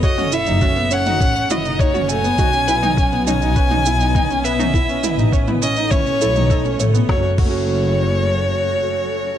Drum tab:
CC |----------------|----------------|----------------|--x-------------|
SH |xxxxxxxxxxxxxxxx|xxxxxxxxxxxxxxxx|xxxxxxxxxxxxxxxx|----------------|
SD |----------------|----------------|----------------|o---------------|
T2 |-o--o--o--o--o--|o--o--o--o--o--o|--o--o--o--o--o-|----------------|
BD |o---o---o---o---|o---o---o---o---|o---o---o---o---|o-o-------------|